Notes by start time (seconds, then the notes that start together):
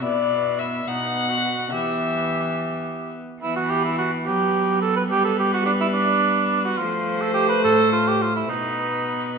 0.02 B2 B3 E4 D5
0.59 E5
0.87 B2 B3 D#4 F#5
1.30 F#4
1.71 E3 B3 G4 E5
3.41 E3 B3 E4 B4
3.56 F#4
3.70 G4
3.85 E4
3.98 F#4
4.26 F#3 B3 G4 B4
4.82 A4
4.96 B4
5.10 G3 G4 B4
5.25 A4
5.39 G4
5.54 F#4
5.66 D4
5.81 E4
5.94 D4
6.65 F#4
6.78 F3 A3 F4 C5
7.22 A4
7.34 G4
7.49 B4
7.64 A2 A4
7.92 F4
8.08 G4
8.22 F4
8.36 E4
8.49 B2 B3 D#4 B4